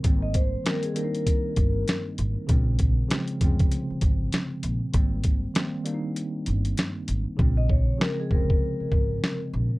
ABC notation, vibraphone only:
X:1
M:4/4
L:1/16
Q:"Swing 16ths" 1/4=98
K:Bbdor
V:1 name="Vibraphone"
z e c2 B A B6- B z3 | z16 | z16 | z e d2 B A B6- B z3 |]